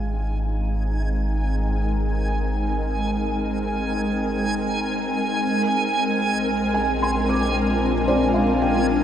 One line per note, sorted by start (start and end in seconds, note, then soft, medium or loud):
0.00 5.37 G#1 medium
0.00 9.04 G#3 medium
0.00 9.04 C4 medium
0.00 5.43 D#4 medium
0.00 0.87 F5 medium
0.00 5.44 G5 medium
0.00 1.11 G#5 soft
0.00 9.04 G#5 medium
0.25 9.04 A#4 medium
5.41 9.04 A#1 medium
6.28 9.04 F4 medium
6.47 9.04 D4 medium
6.74 7.93 G#5 medium
7.02 8.18 C6 soft
7.29 8.43 D6 soft
8.08 9.04 C5 medium
8.08 9.04 D5 medium
8.34 9.04 F5 medium
8.62 9.04 G5 medium